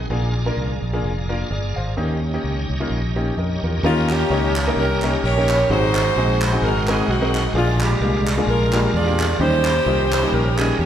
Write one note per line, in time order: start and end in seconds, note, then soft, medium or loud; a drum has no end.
0.10 0.50 A#1 medium
0.10 0.79 A#2 medium
0.10 0.30 A#3 medium
0.10 0.30 D4 medium
0.10 0.30 F4 medium
0.10 1.95 G#4 medium
0.10 0.30 G#4 medium
0.10 1.95 D5 medium
0.10 1.95 F5 medium
0.10 1.95 A#5 medium
0.46 0.70 A#3 medium
0.46 0.70 D4 medium
0.46 0.70 F4 medium
0.46 0.70 A#4 medium
0.57 0.79 C2 medium
0.82 1.00 A#1 medium
0.93 1.11 A#3 medium
0.93 1.11 D4 medium
0.93 1.10 F4 medium
0.93 1.10 G#4 medium
1.03 1.43 F1 medium
1.29 1.45 A#3 medium
1.29 1.45 D4 medium
1.29 1.46 F4 medium
1.29 1.45 A#4 medium
1.50 1.72 G1 medium
1.50 1.75 G#4 soft
1.50 1.75 D5 medium
1.76 1.94 G#1 medium
1.76 2.21 C5 soft
1.76 2.20 F5 medium
1.97 2.37 D#2 medium
1.97 2.65 D#3 medium
1.97 2.17 A#3 medium
1.97 2.17 C#4 medium
1.97 2.17 D#4 medium
1.97 2.17 G4 medium
1.97 3.82 G4 medium
1.97 3.82 C#5 medium
1.97 3.82 D#5 medium
1.97 3.82 A#5 medium
2.34 2.57 A#3 medium
2.34 2.57 C#4 medium
2.34 2.57 D#4 medium
2.34 2.57 G4 medium
2.44 2.66 C#2 medium
2.70 2.87 C2 medium
2.80 2.97 A#3 medium
2.80 2.97 C#4 medium
2.80 2.97 D#4 medium
2.80 2.97 F4 medium
2.90 3.30 A#1 medium
3.16 3.32 A#3 medium
3.16 3.32 C#4 medium
3.16 3.32 D#4 medium
3.16 3.32 G4 medium
3.37 3.59 F2 medium
3.37 3.62 A#4 soft
3.37 3.61 D#5 medium
3.63 3.81 E2 medium
3.63 4.08 F4 soft
3.63 3.83 A#4 medium
3.83 4.23 D#2 loud
3.83 4.52 D#3 medium
3.83 4.10 A#3 medium
3.83 4.08 A#3 medium
3.83 4.10 C#4 medium
3.83 4.08 C#4 medium
3.83 4.10 D#4 medium
3.83 4.08 F4 loud
3.83 5.67 G4 medium
3.83 4.10 G4 medium
3.83 4.10 A#4 medium
3.83 5.67 C#5 medium
3.83 5.67 D#5 medium
3.83 5.67 A#5 medium
4.09 4.98 A#3 medium
4.09 4.76 C#4 medium
4.09 4.56 G4 loud
4.09 clap medium
4.30 4.70 C#2 medium
4.30 4.50 A#3 medium
4.30 4.50 C#4 medium
4.30 4.50 D#4 medium
4.30 4.50 G4 medium
4.30 4.50 C#5 medium
4.56 clap loud
4.67 4.84 A#3 medium
4.67 4.84 C#4 medium
4.67 4.84 D#4 medium
4.67 4.84 G4 medium
4.67 4.84 A#4 medium
4.77 5.16 C2 medium
4.77 5.66 C#4 medium
4.77 5.24 G4 medium
4.77 5.20 A#4 loud
5.02 5.19 A#3 medium
5.02 5.19 C#4 medium
5.02 5.19 D#4 medium
5.02 5.19 G4 medium
5.02 5.19 A#4 medium
5.02 clap medium
5.24 5.63 A#1 loud
5.24 5.67 G4 medium
5.24 5.67 A#4 medium
5.24 5.70 C#5 loud
5.37 5.55 A#3 medium
5.37 5.55 C#4 medium
5.37 5.55 D#4 medium
5.37 5.55 G4 medium
5.37 5.55 A#4 medium
5.49 clap medium
5.70 6.09 G#1 loud
5.70 6.38 G#2 medium
5.70 5.95 G#3 medium
5.70 9.36 G#3 medium
5.70 5.96 C4 medium
5.70 5.96 D#4 medium
5.70 6.59 D#4 medium
5.70 5.95 F#4 medium
5.70 6.59 F#4 medium
5.70 5.96 G#4 medium
5.70 6.41 C5 loud
5.70 7.53 D#5 medium
5.70 7.53 F#5 medium
5.70 7.53 C6 medium
5.95 clap medium
6.16 6.55 A#1 medium
6.16 6.36 G#3 medium
6.16 6.36 C4 medium
6.16 6.36 D#4 medium
6.16 6.36 F#4 medium
6.16 6.36 G#4 medium
6.42 6.61 C5 medium
6.42 clap loud
6.52 6.69 G#3 medium
6.52 6.69 C4 medium
6.52 6.69 D#4 medium
6.52 6.69 F#4 medium
6.52 6.69 G#4 medium
6.62 7.01 G#1 medium
6.62 7.07 D#4 medium
6.62 7.08 F#4 medium
6.62 6.88 A#4 loud
6.87 7.03 G#3 medium
6.87 7.04 C4 medium
6.87 7.04 D#4 medium
6.87 7.04 F#4 medium
6.87 7.09 G#4 medium
6.87 7.04 A#4 medium
6.87 clap medium
7.08 7.47 B1 medium
7.08 7.52 C4 medium
7.08 7.51 D#4 medium
7.08 7.45 F#4 medium
7.21 7.39 G#3 medium
7.21 7.39 C4 medium
7.21 7.39 D#4 medium
7.21 7.39 F#4 medium
7.21 7.40 A#4 medium
7.35 clap medium
7.54 7.93 A#1 loud
7.54 8.22 A#2 medium
7.54 7.80 G#3 medium
7.54 8.44 G#3 medium
7.54 7.81 A#3 medium
7.54 7.80 D4 medium
7.54 7.81 D4 medium
7.54 7.80 F4 medium
7.54 7.79 F4 loud
7.54 7.80 G#4 medium
7.54 9.38 D5 medium
7.54 9.38 F5 medium
7.54 10.86 A#5 medium
7.80 8.47 D4 medium
7.80 8.28 G4 medium
7.80 clap medium
8.01 8.40 C2 medium
8.01 8.21 G#3 medium
8.01 8.21 A#3 medium
8.01 8.21 D4 medium
8.01 8.21 F4 medium
8.01 8.21 G4 medium
8.27 clap loud
8.37 8.54 G#3 medium
8.37 8.54 A#3 medium
8.37 8.54 D4 medium
8.37 8.54 F4 medium
8.37 8.54 G#4 medium
8.47 8.86 A#1 medium
8.47 9.36 D4 medium
8.47 8.94 F4 medium
8.47 8.91 A#4 loud
8.72 8.88 G#3 medium
8.72 8.89 A#3 medium
8.72 8.89 D4 medium
8.72 8.89 F4 medium
8.72 8.89 G4 medium
8.72 clap medium
8.94 9.33 E2 medium
8.94 9.37 F4 medium
8.94 9.37 G#4 medium
8.94 9.40 D5 loud
9.07 9.25 G#3 medium
9.07 9.25 A#3 medium
9.07 9.25 D4 medium
9.07 9.25 F4 medium
9.07 9.25 G4 medium
9.19 clap medium
9.40 9.79 D#2 loud
9.40 10.08 D#3 medium
9.40 9.66 G3 medium
9.40 9.66 A#3 medium
9.40 10.86 C#4 medium
9.40 9.66 C#4 medium
9.40 9.66 D#4 medium
9.40 10.86 G4 medium
9.40 9.66 G4 medium
9.40 10.29 G4 medium
9.40 10.08 C5 loud
9.40 10.86 D#5 medium
9.65 clap loud
9.86 10.25 C2 medium
9.86 10.06 G3 medium
9.86 10.05 A#3 medium
9.86 10.05 C#4 medium
9.86 10.06 D#4 medium
9.86 10.05 F4 medium
10.12 10.31 C5 loud
10.12 clap loud
10.23 10.39 G3 medium
10.23 10.39 A#3 medium
10.23 10.39 C#4 medium
10.23 10.39 D#4 medium
10.23 10.39 G4 medium
10.32 10.71 A#1 medium
10.32 10.78 C#4 medium
10.32 10.77 G4 medium
10.32 10.57 A#4 loud
10.57 10.74 G3 medium
10.57 10.74 A#3 medium
10.57 10.74 C#4 medium
10.57 10.74 D#4 medium
10.57 10.74 G4 medium
10.57 10.77 G#4 medium
10.57 clap medium
10.78 10.86 E2 loud
10.78 10.86 A#3 medium
10.78 10.86 C#4 medium
10.78 10.86 G4 medium